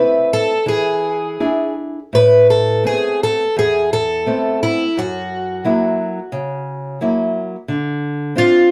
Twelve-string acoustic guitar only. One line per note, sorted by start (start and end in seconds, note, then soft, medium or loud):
0.00 0.33 B4 medium
0.33 0.68 A4 medium
0.68 1.74 G#4 medium
2.15 2.50 B4 medium
2.50 2.86 A4 medium
2.87 3.22 G#4 medium
3.23 3.58 A4 medium
3.59 3.93 G#4 medium
3.93 4.63 A4 medium
4.63 4.98 E4 medium
4.99 6.98 F#4 medium
8.38 8.71 F4 medium